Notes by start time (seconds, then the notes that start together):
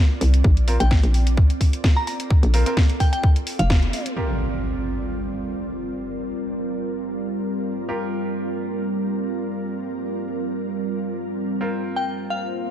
Already playing: C4 F4 A#4 D5
0.21 C2, open hi-hat
0.34 closed hi-hat
0.44 A#1, kick
0.57 closed hi-hat
0.68 C4 F4 A#4, open hi-hat
0.80 A#1 G5, closed hi-hat
0.91 kick, snare
1.03 A#1, closed hi-hat
1.14 open hi-hat
1.23 A4, closed hi-hat
1.37 kick
1.50 closed hi-hat
1.61 kick, open hi-hat
1.73 closed hi-hat
1.84 kick, snare
1.97 A#5
2.07 A#5, open hi-hat
2.20 closed hi-hat
2.31 kick
2.43 A#1, closed hi-hat
2.54 C4 F4 A#4, open hi-hat
2.66 C4 F4 A#4, closed hi-hat
2.77 kick, snare
2.90 closed hi-hat
3.00 G5, kick, open hi-hat
3.13 G5, closed hi-hat
3.23 kick
3.36 closed hi-hat
3.47 open hi-hat
3.59 F1 F5, closed hi-hat
3.70 kick, snare
3.83 closed hi-hat
3.93 open hi-hat
4.06 closed hi-hat
4.16 G3 F4 G4 A#4, impact
4.88 A#4
7.89 F4 G4 A#4
11.61 A#3 C4 F4 A#4 C5
11.80 F4
11.96 G5
12.26 D5
12.30 F5